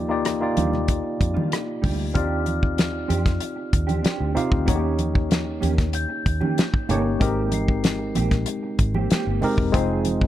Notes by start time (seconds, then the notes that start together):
Already playing: D#2 A#3 D#4 F4 G4 D5
0.08 A#3 D#4 F4 G4 D5, muted clean electric guitar stroke
0.25 muted clean electric guitar stroke, cross-stick, closed hi-hat, high conga
0.40 A#3 D#4 F4 G4 D5, muted clean electric guitar stroke
0.57 D#2 G3 D4 F4, closed hi-hat, muted conga, high conga
0.72 muted clean electric guitar stroke, cross-stick, low conga
0.88 muted clean electric guitar stroke, kick, closed hi-hat, muted conga
1.03 muted clean electric guitar stroke
1.21 F2, kick, closed hi-hat, muted conga
1.34 D#3 G3 D4 F4, high conga
1.52 cross-stick, closed hi-hat
1.67 muted clean electric guitar stroke
1.82 D2 G3 D4 G4, kick, open hi-hat, low conga
1.98 muted clean electric guitar stroke
2.13 D#2 C4 D4 D#4 F4 G4 D5 F6, kick, closed hi-hat, muted conga, low conga
2.46 closed hi-hat, muted conga, high conga
2.61 muted clean electric guitar stroke, kick
2.77 muted clean electric guitar stroke, snare, closed hi-hat, high conga
2.92 muted clean electric guitar stroke
3.08 F2 C4 D4 G4, closed hi-hat, muted conga, high conga
3.25 muted clean electric guitar stroke, kick, snare, closed hi-hat
3.40 muted clean electric guitar stroke, closed hi-hat, muted conga
3.56 muted clean electric guitar stroke
3.73 D#2, kick, closed hi-hat
3.87 C4 D4 G4, closed hi-hat, high conga
4.02 C4 D4 G4, muted fingered electric bass stroke, snare, closed hi-hat
4.20 D2
4.35 C4 D#4 F4 G4 F5, muted clean electric guitar stroke, closed hi-hat, muted conga, low conga
4.50 D2, muted clean electric guitar stroke, kick
4.66 D#2 A3 A#3 C4 C#4 D#4 F#4 C#5, kick, closed hi-hat, muted conga, low conga
4.75 A#3 C#4 G4
4.99 closed hi-hat, muted conga, high conga
5.14 muted clean electric guitar stroke, kick
5.29 muted clean electric guitar stroke, snare, closed hi-hat, high conga
5.45 muted clean electric guitar stroke
5.61 D#2 A#3 C#4 G4, closed hi-hat, high conga
5.76 muted clean electric guitar stroke, kick, snare, closed hi-hat
5.92 G6, muted clean electric guitar stroke, closed hi-hat
6.09 muted clean electric guitar stroke
6.26 D#2, kick, closed hi-hat, muted conga
6.41 D#3 A#3 C#4 G4, high conga
6.58 snare, closed hi-hat
6.72 muted clean electric guitar stroke, kick
6.89 G1 A#3 C#4 D#4 G4 A#4 C#5, closed hi-hat, low conga
7.04 muted clean electric guitar stroke
7.19 G#1 G#3 A#3 C4 D#4 G4 A#4, kick, closed hi-hat, low conga
7.52 C7, closed hi-hat, high conga
7.67 muted clean electric guitar stroke, kick
7.83 muted clean electric guitar stroke, snare, closed hi-hat, high conga
7.98 muted clean electric guitar stroke
8.15 A#1 A#3 C4 G4, closed hi-hat, muted conga, high conga
8.31 muted clean electric guitar stroke, kick, snare, closed hi-hat
8.46 muted clean electric guitar stroke, closed hi-hat, muted conga
8.63 muted clean electric guitar stroke
8.79 G#1, kick, closed hi-hat
8.94 A#3 C4 G4, high conga
9.10 A#3 C4 G4, muted fingered electric bass stroke, snare, closed hi-hat
9.27 G1
9.41 G#3 C4 D#4 G4 A#4, muted clean electric guitar stroke, open hi-hat, low conga
9.58 E1, muted clean electric guitar stroke, kick
9.72 F1 G#3 C4 D#4 F4 G#4 C5, kick, closed hi-hat, low conga
10.05 closed hi-hat, muted conga, high conga
10.21 muted clean electric guitar stroke, kick